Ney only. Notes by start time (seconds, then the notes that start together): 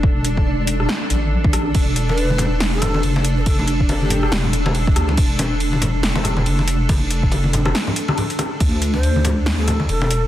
2.09 B4
2.73 A4
3.37 A4 B4
4.02 G4
8.94 C5
9.59 A4
9.89 A4